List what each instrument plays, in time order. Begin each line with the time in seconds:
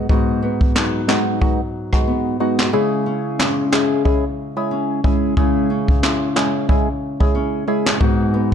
Already playing: nylon-string guitar F#3 B3 D#4
0.09 nylon-string guitar G#2, synth stab G#3 B3 D#4 F#4, kick
0.43 nylon-string guitar B3
0.61 kick
0.76 nylon-string guitar F#3 B3 D#4, snare, clap
1.08 synth stab G#3 B3 D#4 F#4, nylon-string guitar D#4, snare, clap
1.41 synth stab G#3 B3 D#4 F#4, kick
1.93 synth stab G#3 B3 D#4 F#4, kick, cross-stick
2.07 nylon-string guitar B3
2.40 synth stab G#3 B3 D#4 F#4
2.59 snare, clap
2.73 nylon-string guitar C#3, synth stab G#3 C#4 E4 G#4
3.06 nylon-string guitar C#4
3.39 nylon-string guitar G#3 C#4 E4, snare, clap
3.72 synth stab G#3 C#4 E4 G#4, nylon-string guitar E4, snare, clap
4.05 synth stab G#3 C#4 E4 G#4, kick
4.57 synth stab G#3 C#4 E4 G#4
4.71 nylon-string guitar C#4
5.04 synth stab G#3 C#4 E4 G#4, kick
5.37 nylon-string guitar C#3, synth stab G#3 C#4 E4 G#4, kick
5.70 nylon-string guitar C#4
5.88 kick
6.03 nylon-string guitar G#3 C#4 E4, snare, clap
6.36 synth stab G#3 C#4 E4 G#4, nylon-string guitar E4, snare, clap
6.69 synth stab G#3 C#4 E4 G#4, kick
7.20 synth stab G#3 C#4 E4 G#4, kick
7.35 nylon-string guitar C#4
7.68 synth stab G#3 C#4 E4 G#4
7.86 snare, clap
8.00 nylon-string guitar G#2, synth stab G#3 B3 D#4 F#4, kick
8.34 nylon-string guitar B3